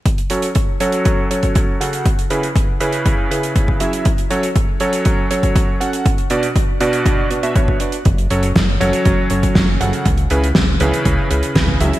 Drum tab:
HH |xxxxx-xxx-xxx-xx|xxxxx-xxx-xxx-xx|xxxxx-xxx-xxx-xx|xxxxx-xxx-xxx-xx|
SD |----------------|----------------|----------------|----------------|
BD |o---o---o--oo---|o---o---o---oo--|o---o---o--oo---|o---o---o---oo--|

HH |xxxxx-xxx-xxx-xx|xxxxx-xxx-xxx-xx|
SD |----o-------o---|----o-------o---|
BD |o---o---o--oo---|o---o---o---oo--|